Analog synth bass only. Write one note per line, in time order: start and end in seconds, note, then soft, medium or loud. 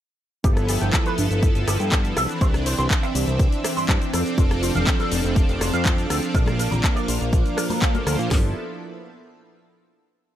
0.44 0.78 G1 loud
0.82 0.92 G1 medium
1.18 1.29 G1 loud
1.31 1.51 G1 medium
1.56 1.65 G1 medium
1.68 1.78 G1 loud
1.80 2.13 G2 medium
2.17 2.27 C2 medium
2.41 2.75 C2 loud
2.79 2.88 C2 medium
3.15 3.25 C2 loud
3.28 3.48 C2 loud
3.77 3.86 G2 soft
3.89 3.99 G2 medium
4.14 4.24 F2 loud
4.38 4.72 F1 loud
4.75 4.85 F1 medium
5.12 5.22 F1 loud
5.24 5.44 F1 loud
5.49 5.59 F1 medium
5.61 5.71 F1 loud
5.74 6.07 F2 medium
6.10 6.21 D2 medium
6.35 6.68 A#1 loud
6.72 6.82 A#1 medium
7.08 7.19 A#1 loud
7.21 7.32 A#1 medium
7.33 7.43 A#1 medium
8.07 8.17 D2 medium
8.19 8.29 A#2 medium
8.31 8.54 G1 medium